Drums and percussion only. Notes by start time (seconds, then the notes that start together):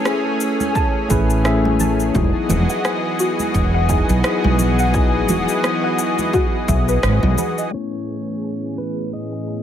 0.05 cross-stick, cabasa
0.40 cabasa
0.60 high conga, cabasa
0.75 kick, cabasa
1.10 kick, cabasa
1.30 cabasa
1.45 cross-stick, cabasa
1.65 high conga
1.80 low conga, cabasa
2.00 cabasa
2.15 kick, cabasa
2.49 high conga, low conga, cabasa
2.70 cabasa
2.85 cross-stick, cabasa
3.19 cabasa
3.39 high conga, cabasa
3.54 kick, cabasa
3.89 kick, cabasa
4.09 cabasa
4.24 cross-stick, cabasa
4.44 high conga
4.59 low conga, cabasa
4.79 cabasa
4.94 kick, cabasa
5.29 high conga, low conga, cabasa
5.49 cabasa
5.64 cross-stick, cabasa
5.99 cabasa
6.19 high conga, cabasa
6.33 kick, cabasa
6.68 kick, cabasa
6.89 cabasa
7.03 cross-stick, cabasa
7.23 high conga
7.38 low conga, cabasa
7.58 cabasa